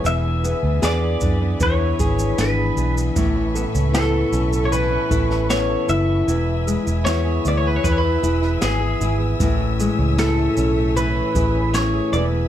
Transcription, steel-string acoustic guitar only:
X:1
M:4/4
L:1/16
Q:1/4=77
K:A
V:1 name="Steel-string acoustic guitar"
[E,B,] D G D B, G D B, E, D G D B, G D B, | E, C A C B, A C B, E, C A C B, A C B, | E, E G E B, G E B, E, E G E B, G E B, | E, C G C A,2 C A, E, C G C A, G E, B, |]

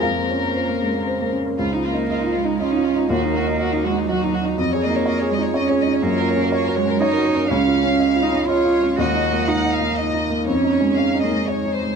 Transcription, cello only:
X:1
M:3/4
L:1/8
Q:1/4=121
K:Db
V:1 name="Cello"
B,4- B, z | z B,2 A, D2 | B,3 A, G,2 | z B,2 A, D2 |
B,3 A, E2 | D3 E F2 | G2 E2 z2 | D3 B, A,2 |]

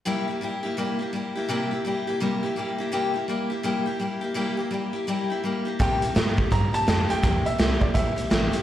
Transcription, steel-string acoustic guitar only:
X:1
M:4/4
L:1/8
Q:"Swing" 1/4=167
K:Cmix
V:1 name="Steel-string acoustic guitar"
[C,G,B,EG] [B,EG] [G,B,EG] [B,EG] [C,G,B,EG] [B,EG] [G,B,EG] [B,EG] | [C,G,B,EG] [B,EG] [G,B,EG] [B,EG] [C,G,B,EG] [B,EG] [G,B,EG] [B,EG] | [C,G,B,EG] [B,EG] [G,B,EG] [B,EG] [C,G,B,EG] [B,EG] [G,B,EG] [B,EG] | [C,G,B,EG] [B,EG] [G,B,EG] [B,EG] [C,G,B,EG] [B,EG] [G,B,EG] [B,EG] |
[C,G,B,EG] [B,EG] [C,G,B,EG] [B,EG] [G,B,EG] [B,EG] [C,G,B,EG] [B,EG] | [C,G,B,EG] [B,G] [C,G,B,EG] [B,EG] [G,B,EG] [B,EG] [C,G,B,EG] [B,EG] |]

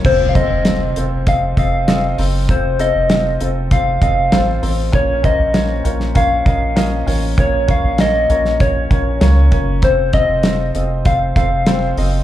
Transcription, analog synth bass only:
X:1
M:4/4
L:1/16
Q:1/4=98
K:Fphr
V:1 name="Analog synth bass" clef=bass
F,,,3 F,,,3 F,,,4 F,,,4 G,,,2 | F,,,3 F,,,3 F,,,4 F,,,2 =A,,,2 A,,,2 | B,,,3 B,,,3 B,,,4 B,,,4 =A,,,2 | B,,,3 B,,,3 B,,,4 B,,,2 D,,2 G,,,2 |
F,,,3 F,,,3 F,,,4 F,,,4 G,,,2 |]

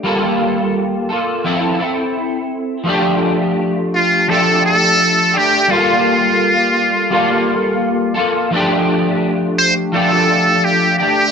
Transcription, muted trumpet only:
X:1
M:4/4
L:1/8
Q:"Swing 16ths" 1/4=85
K:F
V:1 name="Muted trumpet"
z8 | z3 F A A2 G | F6- F z | z3 c A2 G G |]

